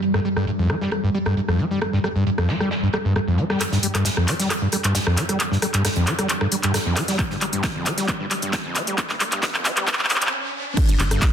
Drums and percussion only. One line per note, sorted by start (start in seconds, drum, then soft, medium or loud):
0.02 closed hi-hat medium
0.14 cross-stick medium
0.14 snare soft
0.25 closed hi-hat medium
0.25 open hi-hat loud
0.36 cross-stick medium
0.36 closed hi-hat soft
0.47 closed hi-hat medium
0.69 cross-stick medium
0.69 closed hi-hat medium
0.69 open hi-hat loud
0.82 snare medium
0.91 cross-stick medium
0.91 closed hi-hat medium
1.15 closed hi-hat medium
1.15 open hi-hat loud
1.25 cross-stick medium
1.25 closed hi-hat soft
1.37 closed hi-hat medium
1.49 cross-stick medium
1.59 closed hi-hat medium
1.59 open hi-hat loud
1.81 cross-stick medium
1.81 closed hi-hat medium
1.93 snare soft
2.04 cross-stick medium
2.04 closed hi-hat medium
2.04 open hi-hat loud
2.16 closed hi-hat soft
2.27 closed hi-hat medium
2.38 cross-stick medium
2.38 closed hi-hat soft
2.49 snare loud
2.49 closed hi-hat medium
2.49 open hi-hat loud
2.60 cross-stick medium
2.71 snare medium
2.71 closed hi-hat medium
2.93 cross-stick medium
2.93 closed hi-hat medium
2.93 open hi-hat loud
3.16 cross-stick medium
3.16 closed hi-hat medium
3.38 closed hi-hat medium
3.38 open hi-hat loud
3.50 cross-stick medium
3.50 snare medium
3.61 cross-stick medium
3.61 clap soft
3.61 closed hi-hat medium
3.72 snare soft
3.83 closed hi-hat medium
3.83 open hi-hat loud
3.95 cross-stick medium
3.95 clap soft
3.95 closed hi-hat medium
3.95 closed hi-hat soft
4.05 snare loud
4.05 closed hi-hat medium
4.17 cross-stick medium
4.28 clap medium
4.28 closed hi-hat medium
4.28 open hi-hat loud
4.40 snare medium
4.40 closed hi-hat medium
4.50 cross-stick medium
4.50 clap medium
4.50 closed hi-hat medium
4.72 cross-stick medium
4.72 closed hi-hat medium
4.72 open hi-hat loud
4.84 clap soft
4.84 closed hi-hat soft
4.84 closed hi-hat medium
4.95 snare loud
4.95 closed hi-hat medium
5.07 cross-stick medium
5.17 clap medium
5.17 closed hi-hat medium
5.17 open hi-hat loud
5.29 cross-stick medium
5.29 closed hi-hat medium
5.40 clap medium
5.40 closed hi-hat medium
5.52 snare soft
5.62 cross-stick medium
5.62 closed hi-hat medium
5.62 open hi-hat loud
5.74 clap medium
5.74 closed hi-hat medium
5.74 closed hi-hat soft
5.85 cross-stick medium
5.85 snare loud
5.85 closed hi-hat medium
5.96 closed hi-hat soft
6.07 clap medium
6.07 closed hi-hat medium
6.07 open hi-hat loud
6.19 cross-stick medium
6.19 closed hi-hat medium
6.29 clap medium
6.29 closed hi-hat medium
6.41 cross-stick medium
6.52 closed hi-hat medium
6.52 open hi-hat loud
6.63 clap medium
6.63 closed hi-hat medium
6.74 cross-stick medium
6.74 snare loud
6.74 closed hi-hat medium
6.97 cross-stick medium
6.97 clap medium
6.97 closed hi-hat medium
6.97 open hi-hat loud
7.08 snare medium
7.08 closed hi-hat medium
7.19 kick loud
7.19 clap medium
7.19 closed hi-hat medium
7.19 closed hi-hat loud
7.30 snare soft
7.41 clap medium
7.41 closed hi-hat medium
7.41 open hi-hat loud
7.52 closed hi-hat soft
7.52 closed hi-hat medium
7.63 kick loud
7.63 snare loud
7.63 clap medium
7.63 closed hi-hat medium
7.86 clap medium
7.86 closed hi-hat medium
7.86 open hi-hat loud
7.98 snare medium
7.98 closed hi-hat medium
8.08 kick loud
8.08 clap medium
8.08 closed hi-hat medium
8.31 clap medium
8.31 closed hi-hat medium
8.31 open hi-hat loud
8.42 closed hi-hat soft
8.42 closed hi-hat medium
8.53 kick loud
8.53 snare loud
8.53 clap medium
8.53 closed hi-hat medium
8.75 clap medium
8.75 closed hi-hat medium
8.75 open hi-hat loud
8.87 closed hi-hat medium
8.98 kick loud
8.98 clap medium
8.98 closed hi-hat medium
9.09 snare soft
9.09 clap medium
9.20 clap medium
9.20 closed hi-hat medium
9.20 open hi-hat loud
9.32 clap medium
9.32 closed hi-hat medium
9.32 closed hi-hat soft
9.43 kick loud
9.43 snare loud
9.43 clap loud
9.43 closed hi-hat medium
9.54 clap medium
9.54 closed hi-hat soft
9.65 clap loud
9.65 closed hi-hat medium
9.65 open hi-hat loud
9.77 clap medium
9.77 closed hi-hat medium
9.88 kick loud
9.88 clap loud
9.88 closed hi-hat medium
9.93 clap medium
9.99 clap medium
10.05 clap medium
10.09 clap loud
10.09 closed hi-hat medium
10.09 open hi-hat loud
10.16 clap medium
10.22 clap medium
10.22 closed hi-hat medium
10.27 clap medium
10.77 kick loud
10.77 cross-stick medium
10.77 closed hi-hat medium
10.77 closed hi-hat loud
10.77 crash loud
10.77 ride medium
10.89 snare soft
10.89 closed hi-hat medium
11.00 clap medium
11.00 closed hi-hat medium
11.00 open hi-hat loud
11.11 cross-stick medium
11.11 closed hi-hat medium
11.11 closed hi-hat soft
11.22 kick loud
11.22 snare loud
11.22 clap loud
11.22 closed hi-hat medium